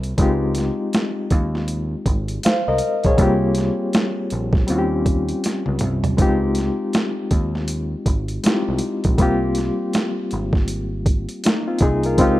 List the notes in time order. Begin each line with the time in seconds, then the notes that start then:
Already playing: C2 G3 A#3 C4 F4 G4
0.03 closed hi-hat
0.18 C#2 G#3 C4 D#4 F4, kick, closed hi-hat
0.22 G4
0.55 snare, closed hi-hat
0.93 snare, closed hi-hat
1.30 D#2, kick, closed hi-hat
1.55 snare
1.68 closed hi-hat
2.06 G#1, kick, closed hi-hat
2.28 closed hi-hat
2.43 C5 F5, muted picked electric bass stroke, snare, closed hi-hat
2.68 C2 A#4 D#5
2.78 closed hi-hat
3.04 A#1 G#4 C#5, kick, closed hi-hat
3.17 C2 G3 A#3 C4 F4, kick, closed hi-hat
3.22 G4
3.55 snare, closed hi-hat
3.93 snare, closed hi-hat
4.30 A#1, closed hi-hat
4.53 kick, snare
4.67 D#2 G3 C4 C#4 F4, closed hi-hat
4.72 F#4
4.78 G4
5.06 kick, closed hi-hat
5.29 closed hi-hat
5.44 snare, closed hi-hat
5.66 C#2, high tom
5.79 closed hi-hat, mid tom
5.83 C2
6.04 closed hi-hat, floor tom
6.17 C#2 G#3 C4 D#4 F4, kick, closed hi-hat
6.22 G4
6.55 snare, closed hi-hat
6.93 snare, closed hi-hat
7.31 D#2, kick, closed hi-hat
7.55 snare
7.68 closed hi-hat
8.06 G#1, kick, closed hi-hat
8.28 closed hi-hat
8.43 G#3 C4 D#4 E4 G4, muted picked electric bass stroke, snare, closed hi-hat
8.52 F4
8.69 C2
8.79 closed hi-hat
9.04 A#1, kick, closed hi-hat
9.18 C2 G3 A#3 C4 F4, kick, closed hi-hat
9.23 G4
9.55 snare, closed hi-hat
9.93 snare, closed hi-hat
10.31 G#1, closed hi-hat
10.53 kick, snare
10.68 closed hi-hat
11.06 kick, closed hi-hat
11.29 closed hi-hat
11.44 A#3 D#4, snare, closed hi-hat
11.68 C4 F4
11.79 C2 G#4, kick, closed hi-hat
11.83 D#4
12.03 F4 A#4, closed hi-hat
12.18 C#2 G#3 C4 D#4 F4, kick, closed hi-hat
12.22 G4